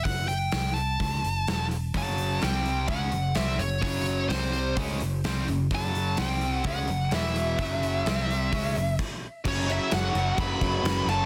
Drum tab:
CC |--------|--------|--------|--------|
HH |oooooooo|oooooooo|oooooooo|oooooooo|
SD |--o---o-|--o---o-|--o---o-|--o---o-|
BD |o---o---|o---o---|o---o---|o---o---|

CC |------x-|xxxxxxxx|
HH |oooooo--|--------|
SD |--o-----|--o---o-|
BD |o---o-o-|o---oo--|